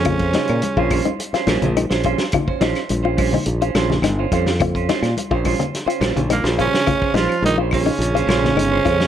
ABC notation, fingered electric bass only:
X:1
M:4/4
L:1/16
Q:1/4=106
K:Bbdor
V:1 name="Fingered electric bass" clef=bass
F,,3 B,, z B,,,2 z3 B,,, B,,,2 B,,,2 z | z2 B,,, z B,,,4 B,,,2 B,,,2 G,,,2 F,,2- | F,,3 B,, z B,,,2 z3 B,,, B,,,2 B,,,2 z | z2 B,,, z B,,,4 B,,,2 B,,,2 G,,,2 F,,2 |]